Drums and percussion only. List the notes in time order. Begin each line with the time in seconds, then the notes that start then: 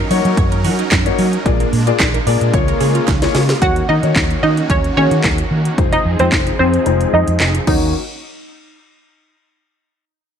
0.11 open hi-hat
0.25 closed hi-hat
0.37 kick, closed hi-hat
0.52 closed hi-hat
0.64 open hi-hat
0.79 closed hi-hat
0.92 kick, snare, clap, closed hi-hat
1.06 closed hi-hat
1.19 open hi-hat
1.33 closed hi-hat
1.46 kick, closed hi-hat
1.60 closed hi-hat
1.73 open hi-hat
1.87 closed hi-hat
2.00 kick, snare, clap, closed hi-hat
2.14 closed hi-hat
2.27 open hi-hat
2.41 closed hi-hat
2.54 kick, closed hi-hat
2.68 closed hi-hat
2.81 open hi-hat
2.95 closed hi-hat
3.08 kick, snare, clap, closed hi-hat
3.22 snare, closed hi-hat
3.35 snare, open hi-hat
3.49 snare, closed hi-hat
3.62 kick, closed hi-hat
3.76 closed hi-hat
4.03 closed hi-hat
4.16 kick, snare, clap, closed hi-hat
4.31 closed hi-hat
4.57 closed hi-hat
4.70 kick, closed hi-hat
4.84 closed hi-hat
5.11 closed hi-hat
5.24 kick, snare, clap, closed hi-hat
5.38 closed hi-hat
5.65 closed hi-hat
5.78 kick, closed hi-hat
5.93 closed hi-hat
6.19 closed hi-hat
6.32 kick, snare, clap, closed hi-hat
6.47 closed hi-hat
6.74 closed hi-hat
6.86 closed hi-hat
7.01 closed hi-hat
7.28 closed hi-hat
7.40 snare, clap, closed hi-hat
7.55 closed hi-hat
7.67 kick, crash